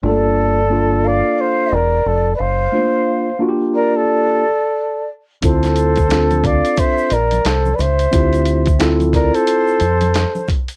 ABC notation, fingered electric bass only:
X:1
M:4/4
L:1/16
Q:"Swing 16ths" 1/4=89
K:Dm
V:1 name="Fingered electric bass" clef=bass
G,,,6- G,,, z3 E,,,2 F,,,2 ^F,,,2 | z16 | D,,6- D,, z3 B,,,2 C,,2 ^C,,2 | D,,6- D,, z3 F,,3 z3 |]